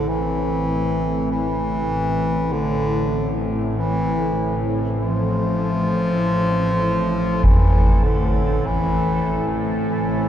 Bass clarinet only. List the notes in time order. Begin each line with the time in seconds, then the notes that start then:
Already playing: D3
0.09 E3
1.31 E3
2.53 D3
3.77 E3
4.98 F3
7.44 E3
8.04 D3
8.66 E3
9.89 E3